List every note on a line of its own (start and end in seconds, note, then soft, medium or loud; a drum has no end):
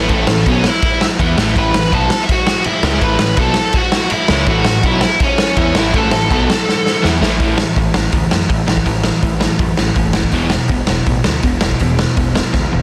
0.00 0.12 B4 medium
0.09 0.26 A1 loud
0.09 0.27 A2 loud
0.09 0.27 E3 medium
0.09 0.28 A3 loud
0.09 0.44 A3 medium
0.09 0.48 A4 loud
0.09 kick loud
0.09 crash medium
0.27 0.45 A1 medium
0.27 0.43 A2 medium
0.27 0.43 E3 medium
0.27 snare loud
0.46 0.63 B1 loud
0.46 0.65 B2 loud
0.46 0.65 F#3 loud
0.46 0.65 B3 medium
0.46 0.65 C#4 medium
0.46 kick loud
0.46 crash medium
0.51 0.69 C#5 medium
0.64 1.00 E4 medium
0.64 snare loud
0.69 1.04 E5 medium
0.82 kick loud
0.82 crash medium
1.01 snare loud
1.19 1.37 E2 medium
1.19 1.37 E3 medium
1.19 1.38 B3 loud
1.19 1.38 E4 loud
1.19 kick loud
1.19 crash medium
1.37 1.55 A1 medium
1.37 1.55 A2 medium
1.37 1.56 E3 medium
1.37 1.56 A3 loud
1.37 snare loud
1.56 1.73 A1 medium
1.56 1.74 A2 loud
1.56 1.75 E3 loud
1.56 1.75 A3 loud
1.56 1.91 B4 medium
1.56 1.94 B5 loud
1.56 kick loud
1.56 crash medium
1.74 1.91 A1 medium
1.74 1.90 A2 medium
1.74 1.90 E3 medium
1.74 snare loud
1.92 2.10 B1 loud
1.92 2.11 B2 medium
1.92 2.11 F#3 loud
1.92 2.11 B3 loud
1.92 2.21 A4 medium
1.92 2.24 A5 loud
1.92 kick loud
1.92 crash medium
2.10 snare loud
2.23 2.30 E5 medium
2.29 2.64 F#4 medium
2.29 2.67 F#5 medium
2.29 kick loud
2.29 crash medium
2.47 snare loud
2.64 3.00 E4 medium
2.64 3.04 E5 medium
2.64 muted overdriven electric guitar stroke medium
2.64 muted picked electric bass stroke soft
2.64 crash medium
2.83 3.00 C#2 medium
2.83 3.00 C#3 medium
2.83 3.01 G#3 loud
2.83 3.01 C#4 medium
2.83 snare loud
3.01 3.18 A1 medium
3.01 3.18 A2 medium
3.01 3.18 E3 loud
3.01 3.19 A3 loud
3.01 3.36 B4 loud
3.01 3.40 B5 loud
3.01 kick loud
3.01 crash medium
3.19 3.37 A1 medium
3.19 3.34 A2 medium
3.19 3.34 E3 medium
3.19 snare loud
3.37 3.55 B1 loud
3.37 3.55 B2 medium
3.37 3.56 F#3 loud
3.37 3.56 B3 loud
3.37 3.73 A4 medium
3.37 kick loud
3.37 crash medium
3.41 3.77 A5 loud
3.54 snare loud
3.73 4.09 F#4 medium
3.73 kick loud
3.73 crash medium
3.78 4.10 F#5 medium
3.92 snare loud
4.10 4.45 E4 medium
4.10 4.47 E5 loud
4.10 muted picked electric bass stroke soft
4.10 muted overdriven electric guitar stroke medium
4.10 crash medium
4.28 4.46 C#2 loud
4.28 4.47 C#3 medium
4.28 4.48 G#3 medium
4.28 4.48 C#4 loud
4.28 snare loud
4.46 4.64 A1 medium
4.46 4.65 A2 medium
4.46 4.65 E3 loud
4.46 4.66 A3 loud
4.46 4.82 F#4 medium
4.46 kick loud
4.46 crash medium
4.51 4.83 F#5 loud
4.65 4.82 A1 medium
4.65 4.81 A2 medium
4.65 4.81 E3 medium
4.65 snare loud
4.83 5.01 B1 loud
4.83 5.02 B2 medium
4.83 5.03 F#3 loud
4.83 5.03 B3 loud
4.83 5.19 E4 medium
4.83 5.23 E5 loud
4.83 kick loud
4.83 crash medium
5.01 snare loud
5.20 5.56 C#4 medium
5.20 5.60 C#5 medium
5.20 kick loud
5.20 crash medium
5.38 snare loud
5.57 5.74 E2 medium
5.57 5.75 E3 medium
5.57 5.75 B3 medium
5.57 5.76 C#4 medium
5.57 5.75 E4 loud
5.57 kick loud
5.57 crash medium
5.61 5.77 C#5 loud
5.74 5.92 A1 loud
5.74 5.92 A2 medium
5.74 5.93 E3 loud
5.74 5.93 A3 loud
5.74 5.94 E4 medium
5.74 snare loud
5.79 5.96 E5 medium
5.93 6.11 A1 medium
5.93 6.10 A2 loud
5.93 6.10 E3 loud
5.93 6.12 A3 loud
5.93 7.01 A4 medium
5.93 kick loud
5.93 crash medium
5.98 7.02 A5 medium
6.11 6.29 A1 medium
6.11 6.27 A2 medium
6.11 6.26 E3 medium
6.11 snare loud
6.30 6.48 B1 loud
6.30 6.48 B2 loud
6.30 6.48 F#3 loud
6.30 6.49 B3 loud
6.30 kick loud
6.30 crash medium
6.50 snare loud
6.69 snare medium
6.86 snare medium
7.03 7.21 E2 medium
7.03 7.21 E3 loud
7.03 7.21 B3 loud
7.03 7.21 E4 loud
7.03 snare medium
7.21 7.40 A1 loud
7.21 7.38 A2 loud
7.21 7.38 E3 medium
7.21 7.39 A3 medium
7.21 snare medium
7.40 7.64 A1 medium
7.40 7.57 A2 medium
7.40 7.57 E3 loud
7.40 7.58 A3 medium
7.40 kick loud
7.40 open hi-hat medium
7.58 7.76 A2 medium
7.58 7.76 E3 medium
7.58 snare loud
7.76 7.89 A1 medium
7.76 7.93 A2 medium
7.76 7.94 E3 medium
7.76 kick loud
7.76 open hi-hat medium
7.94 8.07 A1 medium
7.94 8.11 A2 medium
7.94 8.12 E3 medium
7.94 snare loud
8.12 8.25 D2 medium
8.12 8.30 A2 medium
8.12 8.30 E3 medium
8.12 kick loud
8.12 open hi-hat medium
8.31 8.44 F#2 medium
8.31 8.49 A2 medium
8.31 8.49 E3 medium
8.31 snare loud
8.49 8.61 A1 medium
8.49 8.66 A2 medium
8.49 8.67 E3 medium
8.49 kick loud
8.49 open hi-hat medium
8.67 8.79 A1 medium
8.67 8.84 A2 medium
8.67 8.85 E3 medium
8.67 snare loud
8.77 kick medium
8.86 9.10 A1 medium
8.86 9.03 A2 medium
8.86 9.03 E3 medium
8.86 kick medium
8.86 open hi-hat medium
9.04 9.21 A2 medium
9.04 9.21 E3 medium
9.04 snare loud
9.23 9.46 A1 medium
9.23 9.39 A2 medium
9.23 9.40 E3 medium
9.23 kick loud
9.23 open hi-hat medium
9.40 9.58 A2 medium
9.40 9.58 E3 medium
9.40 snare medium
9.59 9.71 F#2 medium
9.59 9.77 A2 medium
9.59 9.77 E3 medium
9.59 kick loud
9.59 open hi-hat medium
9.77 9.89 A1 medium
9.77 9.95 A2 medium
9.77 9.95 E3 medium
9.77 snare medium
9.95 10.20 F#1 medium
9.95 10.13 A2 medium
9.95 10.14 E3 medium
9.95 kick loud
9.95 open hi-hat medium
10.13 10.32 A2 medium
10.13 10.32 E3 medium
10.13 snare loud
10.24 kick medium
10.31 10.56 E1 medium
10.31 10.51 E2 medium
10.31 10.51 B2 medium
10.31 10.51 E3 medium
10.31 kick medium
10.31 open hi-hat medium
10.50 10.69 E2 medium
10.50 10.69 B2 medium
10.50 snare loud
10.68 10.81 E1 loud
10.68 10.87 E2 medium
10.68 10.87 B2 medium
10.68 kick loud
10.68 open hi-hat medium
10.87 11.00 E1 medium
10.87 11.05 E2 medium
10.87 11.06 B2 medium
10.87 snare loud
11.06 11.19 A1 medium
11.06 11.24 E2 medium
11.06 11.24 B2 loud
11.06 kick loud
11.06 open hi-hat medium
11.24 11.37 D2 medium
11.24 11.42 E2 medium
11.24 11.42 B2 medium
11.24 snare loud
11.43 11.55 E1 medium
11.43 11.60 E2 medium
11.43 11.60 B2 medium
11.43 kick loud
11.43 open hi-hat medium
11.61 11.74 E1 medium
11.61 11.78 E2 medium
11.61 11.79 B2 medium
11.61 snare loud
11.71 kick medium
11.79 12.04 E1 medium
11.79 11.97 E2 medium
11.79 11.97 B2 medium
11.79 kick medium
11.79 open hi-hat medium
11.99 12.15 E2 medium
11.99 12.16 B2 medium
11.99 snare loud
12.17 12.40 E1 medium
12.17 12.34 E2 medium
12.17 12.34 B2 medium
12.17 kick loud
12.17 open hi-hat medium
12.35 12.52 E2 medium
12.35 12.52 B2 medium
12.35 snare loud
12.53 12.66 D2 medium
12.53 12.70 E2 medium
12.53 12.70 B2 medium
12.53 kick loud
12.53 snare medium
12.73 12.82 E1 medium
12.73 12.82 E2 medium
12.73 12.82 B2 medium